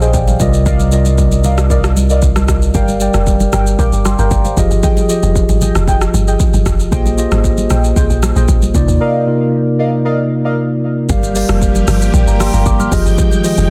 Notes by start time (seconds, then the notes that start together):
Already playing: A#1 A#2 F3 G4 G#4 C5 D5 D#5 F5
0.01 G#4 C5 D#5 G5 G#5, shaker
0.14 D5 G5, kick, shaker
0.28 C5 F5, high conga, shaker
0.39 C2 C3 G3 F4 A#4 D5 D#5, kick, shaker
0.54 shaker
0.66 A#4 D5 D#5 F5, kick, low conga, shaker
0.80 high conga, shaker
0.91 C3 G3 F4 A#4 D5 D#5, shaker
1.05 high conga, shaker
1.18 kick, shaker
1.32 high conga, shaker
1.44 A#4 D5 D#5 F5, high conga, low conga, shaker
1.58 cross-stick, shaker
1.70 A#4 D5 D#5 F5, kick, shaker
1.84 cross-stick, shaker
1.97 high conga, shaker
2.10 A#4 D5 D#5 F5, shaker
2.22 kick, shaker
2.36 cross-stick, high conga, shaker
2.48 kick, cross-stick, shaker
2.62 shaker
2.74 G1 G3 G4 A#4 D5 F5 G5, kick, low conga, shaker
2.88 high conga, shaker
3.00 G3 G4 A#4 D5 G5, shaker
3.14 F1, cross-stick, high conga, shaker
3.27 kick, shaker
3.40 high conga, shaker
3.53 G1 A#4 F5 G5, cross-stick, high conga, low conga, shaker
3.67 shaker
3.79 A#1 A#4 F5 G5 D6, kick, shaker
3.93 G1, shaker
4.05 G5 C6, cross-stick, high conga, shaker
4.18 G1 A#4 F5 G5 A#5, shaker
4.31 G1 D5 G5, kick, shaker
4.45 C5 F5, high conga, shaker
4.56 F1 F3 F4 G4 G#4 D#5, kick, shaker
4.71 G1, shaker
4.83 G#4 D#5 G5, kick, low conga, shaker
4.97 high conga, shaker
5.09 F3 F4 G4 G#4 D#5, shaker
5.23 F1, high conga, shaker
5.36 kick, shaker
5.49 G#1, high conga, shaker
5.61 G#4 D#5 G5, high conga, low conga, shaker
5.75 F1, cross-stick, shaker
5.87 G#4 D#5 G5, kick, shaker
6.01 cross-stick, shaker
6.14 G1, high conga, shaker
6.27 G#4 D#5 G5, shaker
6.40 kick, shaker
6.54 G1, high conga, shaker
6.66 F1, kick, cross-stick, shaker
6.80 shaker
6.91 A#1 A#3 F4 G4 G#4 C5 D#5 G5, kick, low conga, shaker
7.06 high conga, shaker
7.17 A#3 F4 G4 G#4 C5 D#5, shaker
7.32 G#1, cross-stick, high conga, shaker
7.44 kick, shaker
7.58 high conga, shaker
7.70 A#1 G#4 C5 D#5 G5, cross-stick, high conga, low conga, shaker
7.84 shaker
7.96 C2 G#4 C5 D#5 G5, kick, shaker
8.10 A#1, shaker
8.23 cross-stick, high conga, shaker
8.36 A#1 G#4 C5 D#5 G5, shaker
8.48 A#1, kick, shaker
8.62 high conga, shaker
8.74 C2 C3 A#3 D#4 F4 D5, kick, shaker
8.88 D#2, shaker
9.00 A#4 D5 D#5 F5
9.26 C3 A#3 D#4 F4 A#4
9.79 A#4 D5 D#5 F5
10.05 A#4 D5 D#5 F5
10.45 A#4 D5 D#5 F5
11.09 G1 F3 G3 A#3 G4 A#4 D5 F5, kick, low conga, shaker
11.23 high conga, shaker
11.35 G3 G4 A#4 D5 F5, open hi-hat, shaker
11.49 F1, cross-stick, high conga, shaker
11.62 kick, shaker
11.75 high conga, shaker
11.88 G1, cross-stick, open hi-hat, high conga, low conga, shaker
12.02 shaker
12.14 A#1 D5 G5, kick, shaker
12.27 G1 F5 A#5, shaker
12.40 G5 C6, cross-stick, open hi-hat, high conga, shaker
12.54 G1 F5 A#5, shaker
12.66 G1 G5 D6, kick, shaker
12.80 C6 F6, high conga, shaker
12.91 F1 D#3 F3 G#3 F4 G4 G#4 D#5 G5, kick, open hi-hat, shaker
13.06 G1, shaker
13.18 kick, low conga, shaker
13.31 high conga, shaker
13.43 F3 F4 G4 G#4 D#5, open hi-hat, shaker
13.58 F1, high conga, shaker